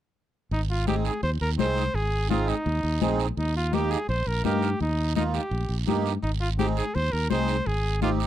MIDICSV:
0, 0, Header, 1, 5, 480
1, 0, Start_track
1, 0, Key_signature, -4, "major"
1, 0, Tempo, 357569
1, 693, Time_signature, 4, 2, 24, 8
1, 11100, End_track
2, 0, Start_track
2, 0, Title_t, "Trumpet"
2, 0, Program_c, 0, 56
2, 709, Note_on_c, 0, 63, 77
2, 813, Note_off_c, 0, 63, 0
2, 943, Note_on_c, 0, 65, 83
2, 1162, Note_off_c, 0, 65, 0
2, 1180, Note_on_c, 0, 67, 88
2, 1286, Note_off_c, 0, 67, 0
2, 1415, Note_on_c, 0, 68, 77
2, 1637, Note_off_c, 0, 68, 0
2, 1656, Note_on_c, 0, 72, 90
2, 1763, Note_off_c, 0, 72, 0
2, 1902, Note_on_c, 0, 70, 85
2, 2008, Note_off_c, 0, 70, 0
2, 2141, Note_on_c, 0, 72, 102
2, 2619, Note_on_c, 0, 68, 97
2, 2639, Note_off_c, 0, 72, 0
2, 3085, Note_off_c, 0, 68, 0
2, 3093, Note_on_c, 0, 65, 90
2, 3345, Note_on_c, 0, 63, 85
2, 3366, Note_off_c, 0, 65, 0
2, 4299, Note_off_c, 0, 63, 0
2, 4535, Note_on_c, 0, 63, 84
2, 4757, Note_off_c, 0, 63, 0
2, 4786, Note_on_c, 0, 65, 83
2, 5020, Note_on_c, 0, 67, 88
2, 5040, Note_off_c, 0, 65, 0
2, 5250, Note_on_c, 0, 68, 82
2, 5270, Note_off_c, 0, 67, 0
2, 5486, Note_off_c, 0, 68, 0
2, 5494, Note_on_c, 0, 72, 89
2, 5739, Note_on_c, 0, 70, 85
2, 5759, Note_off_c, 0, 72, 0
2, 5970, Note_off_c, 0, 70, 0
2, 5978, Note_on_c, 0, 67, 85
2, 6421, Note_off_c, 0, 67, 0
2, 6465, Note_on_c, 0, 63, 79
2, 6905, Note_off_c, 0, 63, 0
2, 6927, Note_on_c, 0, 63, 81
2, 7036, Note_off_c, 0, 63, 0
2, 7168, Note_on_c, 0, 67, 75
2, 7725, Note_off_c, 0, 67, 0
2, 8357, Note_on_c, 0, 63, 79
2, 8468, Note_off_c, 0, 63, 0
2, 8602, Note_on_c, 0, 65, 85
2, 8712, Note_off_c, 0, 65, 0
2, 8846, Note_on_c, 0, 67, 98
2, 8955, Note_off_c, 0, 67, 0
2, 9088, Note_on_c, 0, 68, 90
2, 9326, Note_on_c, 0, 72, 99
2, 9346, Note_off_c, 0, 68, 0
2, 9563, Note_on_c, 0, 70, 92
2, 9583, Note_off_c, 0, 72, 0
2, 9788, Note_off_c, 0, 70, 0
2, 9796, Note_on_c, 0, 72, 99
2, 10292, Note_on_c, 0, 68, 85
2, 10312, Note_off_c, 0, 72, 0
2, 10761, Note_off_c, 0, 68, 0
2, 10770, Note_on_c, 0, 65, 96
2, 10878, Note_off_c, 0, 65, 0
2, 11004, Note_on_c, 0, 63, 80
2, 11100, Note_off_c, 0, 63, 0
2, 11100, End_track
3, 0, Start_track
3, 0, Title_t, "Accordion"
3, 0, Program_c, 1, 21
3, 1157, Note_on_c, 1, 60, 70
3, 1163, Note_on_c, 1, 63, 61
3, 1167, Note_on_c, 1, 68, 73
3, 1501, Note_off_c, 1, 60, 0
3, 1504, Note_off_c, 1, 63, 0
3, 1506, Note_off_c, 1, 68, 0
3, 2116, Note_on_c, 1, 60, 73
3, 2125, Note_on_c, 1, 63, 61
3, 2131, Note_on_c, 1, 68, 71
3, 2460, Note_off_c, 1, 60, 0
3, 2465, Note_off_c, 1, 63, 0
3, 2468, Note_off_c, 1, 68, 0
3, 3072, Note_on_c, 1, 60, 72
3, 3079, Note_on_c, 1, 63, 57
3, 3084, Note_on_c, 1, 68, 81
3, 3419, Note_off_c, 1, 60, 0
3, 3422, Note_off_c, 1, 63, 0
3, 3424, Note_off_c, 1, 68, 0
3, 4036, Note_on_c, 1, 60, 82
3, 4039, Note_on_c, 1, 63, 73
3, 4045, Note_on_c, 1, 68, 95
3, 4380, Note_off_c, 1, 60, 0
3, 4382, Note_off_c, 1, 63, 0
3, 4385, Note_off_c, 1, 68, 0
3, 4995, Note_on_c, 1, 58, 68
3, 4997, Note_on_c, 1, 63, 58
3, 5008, Note_on_c, 1, 67, 82
3, 5340, Note_off_c, 1, 58, 0
3, 5341, Note_off_c, 1, 63, 0
3, 5346, Note_off_c, 1, 67, 0
3, 5950, Note_on_c, 1, 58, 71
3, 5951, Note_on_c, 1, 63, 62
3, 5957, Note_on_c, 1, 70, 75
3, 6297, Note_off_c, 1, 58, 0
3, 6298, Note_off_c, 1, 63, 0
3, 6300, Note_off_c, 1, 70, 0
3, 6921, Note_on_c, 1, 58, 71
3, 6923, Note_on_c, 1, 63, 61
3, 6929, Note_on_c, 1, 65, 71
3, 7262, Note_off_c, 1, 58, 0
3, 7263, Note_off_c, 1, 63, 0
3, 7266, Note_off_c, 1, 65, 0
3, 7880, Note_on_c, 1, 58, 77
3, 7881, Note_on_c, 1, 63, 71
3, 7893, Note_on_c, 1, 67, 91
3, 8222, Note_off_c, 1, 58, 0
3, 8222, Note_off_c, 1, 63, 0
3, 8228, Note_off_c, 1, 67, 0
3, 8842, Note_on_c, 1, 60, 70
3, 8848, Note_on_c, 1, 63, 61
3, 8855, Note_on_c, 1, 68, 78
3, 9182, Note_off_c, 1, 60, 0
3, 9185, Note_off_c, 1, 63, 0
3, 9189, Note_off_c, 1, 68, 0
3, 9809, Note_on_c, 1, 60, 65
3, 9812, Note_on_c, 1, 63, 65
3, 9821, Note_on_c, 1, 68, 78
3, 10146, Note_off_c, 1, 60, 0
3, 10147, Note_off_c, 1, 63, 0
3, 10152, Note_off_c, 1, 68, 0
3, 10756, Note_on_c, 1, 60, 66
3, 10766, Note_on_c, 1, 63, 61
3, 10769, Note_on_c, 1, 67, 79
3, 11099, Note_off_c, 1, 60, 0
3, 11100, Note_off_c, 1, 63, 0
3, 11100, Note_off_c, 1, 67, 0
3, 11100, End_track
4, 0, Start_track
4, 0, Title_t, "Fingered electric bass"
4, 0, Program_c, 2, 33
4, 688, Note_on_c, 2, 32, 85
4, 1458, Note_off_c, 2, 32, 0
4, 1650, Note_on_c, 2, 39, 92
4, 1843, Note_off_c, 2, 39, 0
4, 1894, Note_on_c, 2, 39, 78
4, 2085, Note_off_c, 2, 39, 0
4, 2606, Note_on_c, 2, 32, 85
4, 3377, Note_off_c, 2, 32, 0
4, 3569, Note_on_c, 2, 39, 101
4, 3762, Note_off_c, 2, 39, 0
4, 3806, Note_on_c, 2, 39, 77
4, 4001, Note_off_c, 2, 39, 0
4, 4048, Note_on_c, 2, 34, 75
4, 4434, Note_off_c, 2, 34, 0
4, 4527, Note_on_c, 2, 39, 79
4, 5297, Note_off_c, 2, 39, 0
4, 5486, Note_on_c, 2, 34, 92
4, 5680, Note_off_c, 2, 34, 0
4, 5727, Note_on_c, 2, 34, 82
4, 5921, Note_off_c, 2, 34, 0
4, 5970, Note_on_c, 2, 43, 80
4, 6354, Note_off_c, 2, 43, 0
4, 6451, Note_on_c, 2, 39, 82
4, 7219, Note_off_c, 2, 39, 0
4, 7399, Note_on_c, 2, 34, 88
4, 7596, Note_off_c, 2, 34, 0
4, 7640, Note_on_c, 2, 34, 78
4, 7837, Note_off_c, 2, 34, 0
4, 7885, Note_on_c, 2, 43, 77
4, 8271, Note_off_c, 2, 43, 0
4, 8364, Note_on_c, 2, 32, 84
4, 9135, Note_off_c, 2, 32, 0
4, 9338, Note_on_c, 2, 39, 95
4, 9527, Note_off_c, 2, 39, 0
4, 9572, Note_on_c, 2, 39, 76
4, 9763, Note_off_c, 2, 39, 0
4, 9821, Note_on_c, 2, 36, 73
4, 10201, Note_off_c, 2, 36, 0
4, 10293, Note_on_c, 2, 32, 94
4, 11059, Note_off_c, 2, 32, 0
4, 11100, End_track
5, 0, Start_track
5, 0, Title_t, "Drums"
5, 691, Note_on_c, 9, 74, 66
5, 696, Note_on_c, 9, 63, 34
5, 825, Note_off_c, 9, 74, 0
5, 831, Note_off_c, 9, 63, 0
5, 1171, Note_on_c, 9, 73, 64
5, 1180, Note_on_c, 9, 63, 76
5, 1305, Note_off_c, 9, 73, 0
5, 1314, Note_off_c, 9, 63, 0
5, 1408, Note_on_c, 9, 73, 66
5, 1542, Note_off_c, 9, 73, 0
5, 1649, Note_on_c, 9, 74, 64
5, 1660, Note_on_c, 9, 63, 34
5, 1784, Note_off_c, 9, 74, 0
5, 1795, Note_off_c, 9, 63, 0
5, 2134, Note_on_c, 9, 63, 77
5, 2138, Note_on_c, 9, 73, 62
5, 2268, Note_off_c, 9, 63, 0
5, 2272, Note_off_c, 9, 73, 0
5, 2381, Note_on_c, 9, 73, 61
5, 2515, Note_off_c, 9, 73, 0
5, 2616, Note_on_c, 9, 63, 33
5, 2623, Note_on_c, 9, 74, 63
5, 2750, Note_off_c, 9, 63, 0
5, 2758, Note_off_c, 9, 74, 0
5, 3095, Note_on_c, 9, 73, 62
5, 3099, Note_on_c, 9, 63, 75
5, 3230, Note_off_c, 9, 73, 0
5, 3233, Note_off_c, 9, 63, 0
5, 3332, Note_on_c, 9, 73, 65
5, 3466, Note_off_c, 9, 73, 0
5, 3570, Note_on_c, 9, 74, 65
5, 3576, Note_on_c, 9, 63, 31
5, 3704, Note_off_c, 9, 74, 0
5, 3710, Note_off_c, 9, 63, 0
5, 4050, Note_on_c, 9, 63, 76
5, 4055, Note_on_c, 9, 73, 65
5, 4185, Note_off_c, 9, 63, 0
5, 4189, Note_off_c, 9, 73, 0
5, 4291, Note_on_c, 9, 73, 69
5, 4425, Note_off_c, 9, 73, 0
5, 4529, Note_on_c, 9, 74, 67
5, 4533, Note_on_c, 9, 63, 34
5, 4663, Note_off_c, 9, 74, 0
5, 4668, Note_off_c, 9, 63, 0
5, 5007, Note_on_c, 9, 73, 60
5, 5009, Note_on_c, 9, 63, 73
5, 5142, Note_off_c, 9, 73, 0
5, 5143, Note_off_c, 9, 63, 0
5, 5248, Note_on_c, 9, 73, 70
5, 5382, Note_off_c, 9, 73, 0
5, 5489, Note_on_c, 9, 74, 62
5, 5494, Note_on_c, 9, 63, 34
5, 5623, Note_off_c, 9, 74, 0
5, 5628, Note_off_c, 9, 63, 0
5, 5961, Note_on_c, 9, 73, 62
5, 5970, Note_on_c, 9, 63, 67
5, 6096, Note_off_c, 9, 73, 0
5, 6105, Note_off_c, 9, 63, 0
5, 6207, Note_on_c, 9, 73, 61
5, 6341, Note_off_c, 9, 73, 0
5, 6449, Note_on_c, 9, 74, 69
5, 6458, Note_on_c, 9, 63, 32
5, 6583, Note_off_c, 9, 74, 0
5, 6592, Note_off_c, 9, 63, 0
5, 6919, Note_on_c, 9, 73, 67
5, 6934, Note_on_c, 9, 63, 74
5, 7053, Note_off_c, 9, 73, 0
5, 7068, Note_off_c, 9, 63, 0
5, 7169, Note_on_c, 9, 73, 66
5, 7303, Note_off_c, 9, 73, 0
5, 7403, Note_on_c, 9, 74, 65
5, 7415, Note_on_c, 9, 63, 33
5, 7537, Note_off_c, 9, 74, 0
5, 7549, Note_off_c, 9, 63, 0
5, 7892, Note_on_c, 9, 73, 61
5, 7895, Note_on_c, 9, 63, 75
5, 8026, Note_off_c, 9, 73, 0
5, 8029, Note_off_c, 9, 63, 0
5, 8131, Note_on_c, 9, 73, 58
5, 8266, Note_off_c, 9, 73, 0
5, 8374, Note_on_c, 9, 74, 70
5, 8375, Note_on_c, 9, 63, 33
5, 8508, Note_off_c, 9, 74, 0
5, 8509, Note_off_c, 9, 63, 0
5, 8848, Note_on_c, 9, 63, 78
5, 8855, Note_on_c, 9, 73, 67
5, 8982, Note_off_c, 9, 63, 0
5, 8989, Note_off_c, 9, 73, 0
5, 9088, Note_on_c, 9, 73, 68
5, 9222, Note_off_c, 9, 73, 0
5, 9327, Note_on_c, 9, 74, 67
5, 9333, Note_on_c, 9, 63, 34
5, 9461, Note_off_c, 9, 74, 0
5, 9468, Note_off_c, 9, 63, 0
5, 9805, Note_on_c, 9, 63, 67
5, 9806, Note_on_c, 9, 73, 63
5, 9940, Note_off_c, 9, 63, 0
5, 9941, Note_off_c, 9, 73, 0
5, 10041, Note_on_c, 9, 73, 68
5, 10175, Note_off_c, 9, 73, 0
5, 10286, Note_on_c, 9, 74, 66
5, 10289, Note_on_c, 9, 63, 33
5, 10421, Note_off_c, 9, 74, 0
5, 10423, Note_off_c, 9, 63, 0
5, 10764, Note_on_c, 9, 73, 63
5, 10768, Note_on_c, 9, 63, 74
5, 10899, Note_off_c, 9, 73, 0
5, 10902, Note_off_c, 9, 63, 0
5, 11010, Note_on_c, 9, 73, 72
5, 11100, Note_off_c, 9, 73, 0
5, 11100, End_track
0, 0, End_of_file